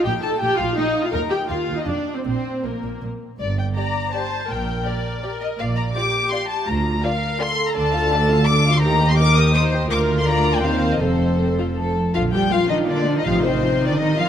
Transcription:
<<
  \new Staff \with { instrumentName = "Violin section" } { \time 3/4 \key bes \major \tempo 4 = 165 g''8 a''8 g''8 f''8 ees''8. f''16 | bes''8 g''8 f''8. ees''16 d''8. c''16 | c''4 bes'4 r4 | \key g \minor d''8 g''8 bes''4 a''4 |
g''4 d''4. ees''8 | f''8 bes''8 d'''4 c'''8 a''8 | bes''4 f''4 c'''8. bes''16 | \key bes \major a''2 d'''8. c'''16 |
bes''8. c'''16 d'''8 ees'''8 ees'''8 r8 | d'''8. c'''16 bes''8. g''16 f''8. ees''16 | c''2 r4 | f''8 g''8 f''8 ees''8 d''8. ees''16 |
f''8 c''4~ c''16 d''16 ees''8 f''8 | }
  \new Staff \with { instrumentName = "Violin section" } { \time 3/4 \key bes \major g''8 a''8 g''8 f''8 ees''8. f''16 | bes''8 g''8 f''8. ees''16 d''8. c''16 | c''4 bes'4 r4 | \key g \minor r4 <g' d''>4 <g' d''>4 |
r4 <g' d''>4 <g' d''>4 | r4 <f' d''>4 <f' d''>4 | r4 <f' d''>4 <f' d''>4 | \key bes \major <d' d''>8 <f' f''>8 <d' d''>8 <f' f''>8 <d' d''>8 <f' f''>8 |
<ees' bes'>8 <g' ees''>8 <ees' bes'>8 <g' ees''>8 <ees' bes'>8 <g' ees''>8 | <f' bes'>4 <f' bes'>4 <c' bes'>4 | <c' a'>4 c'8 f'8 a'4 | f'8 g'8 f'8 ees'8 d'8. ees'16 |
f'8 c'4~ c'16 d'16 ees'8 f'8 | }
  \new Staff \with { instrumentName = "Viola section" } { \time 3/4 \key bes \major << { g'8 a'8 g'8 f'8 ees'8. f'16 | bes'8 g'8 f'8. ees'16 d'8. c'16 | c'4 bes4 r4 | \key g \minor r4 d''4 c''4 |
bes'2 bes'4 | d''4 g'2 | f'4 bes'4 a'4~ | \key bes \major a'2. |
g'4 bes'4 c''4 | bes'4 d''4 c''4 | a'2~ a'8 r8 | f'2. |
ees'2. | } \\ { r2. | r2. | r2. | r2. |
r2. | r2. | r2. | r2. |
r2. | r2. | r2. | d8 f8 bes8 d'8 bes8 f8 |
c8 ees8 f8 ees8 c8 ees8 | } >> }
  \new Staff \with { instrumentName = "Cello section" } { \clef bass \time 3/4 \key bes \major bes,8 r8 bes,8 bes,8 bes,8 r8 | ees,8 r8 ees,8 ees,8 f,8 r8 | bes,8 r8 bes,8 bes,8 bes,8 r8 | \key g \minor g,4 r2 |
bes,4 r2 | bes,4 r2 | d,4 r2 | \key bes \major d,2. |
ees,2. | d,2 ees,4 | f,2~ f,8 r8 | f8 g8 f8 ees8 d8. ees16 |
f8 c4~ c16 d16 ees8 f8 | }
  \new Staff \with { instrumentName = "Double bass section" } { \clef bass \time 3/4 \key bes \major bes,,8 r8 bes,,8 bes,,8 bes,,8 r8 | ees,8 r8 ees,8 ees,8 f,,8 r8 | bes,,8 r8 bes,,8 bes,,8 bes,,8 r8 | \key g \minor g,,4 r2 |
bes,,4 r2 | bes,,4 r2 | d,4 r2 | \key bes \major d,2. |
ees,2. | d,2 ees,4 | f,,2~ f,,8 r8 | bes,,4 r2 |
a,,4 r2 | }
>>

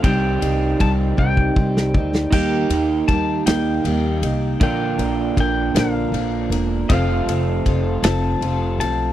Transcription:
<<
  \new Staff \with { instrumentName = "Pedal steel guitar" } { \time 6/8 \key bes \major \tempo 4. = 52 g''4 a''8 g''4. | g''4 a''8 g''4. | g''4 g''8 f''4 r8 | f''4. a''4 a''8 | }
  \new Staff \with { instrumentName = "Upright piano" } { \time 6/8 \key bes \major r2. | <ees' g' bes' ees''>4. <ees' g' bes' ees''>4. | <d' f' bes' d''>4. <d' f' bes' c''>4. | <c' f' a' c''>4. <c' f' a' c''>4. | }
  \new Staff \with { instrumentName = "Twelve-string acoustic guitar" } { \time 6/8 \key bes \major <c g c' ees' g'>8 <c' ees' g'>8 <g c' ees' g'>8 <c g c' ees' g'>8 <g c' ees' g'>8 <c' ees' g'>8 | <ees g bes ees' g'>8 <bes ees' g'>8 <g bes ees' g'>8 <ees g bes ees' g'>8 <g bes ees' g'>8 <bes ees' g'>8 | <bes, d f bes d' bes'>8 <f bes d' bes'>8 <f bes d' bes'>8 <bes, d f bes d' bes'>8 <f bes d' bes'>8 <f bes d' bes'>8 | <f c' f' a'>8 <c' f' a'>8 <f c' f' a'>8 <f c' f' a'>8 <f c' f' a'>8 <c' f' a'>8 | }
  \new Staff \with { instrumentName = "Clean electric guitar" } { \time 6/8 \key bes \major <c ees g c' g'>2. | <ees bes ees' g'>2. | <bes, d bes d' f'>2. | <f, c f a c' f'>2. | }
  \new Staff \with { instrumentName = "Upright bass" } { \clef bass \time 6/8 \key bes \major c,8 c,8 c,8 c,8 c,8 d,8 | ees,8 ees,8 ees,8 ees,8 ees,8 c,8 | bes,,8 bes,,8 bes,,8 bes,,8 bes,,8 e,,8 | f,,8 f,,8 f,,8 f,,8 f,,8 b,,8 | }
  \new DrumStaff \with { instrumentName = "Drums" } \drummode { \time 6/8 <bd cymr>8 cymr8 <bd cymr>8 bd16 bd16 bd16 sn16 bd16 sn16 | <cymc bd>8 cymr8 <bd cymr>8 <cymr sn>8 cymr8 cymr8 | <bd cymr>8 cymr8 <bd cymr>8 <cymr sn>8 cymr8 cymr8 | <bd cymr>8 cymr8 <bd cymr>8 <cymr sn>8 cymr8 cymr8 | }
>>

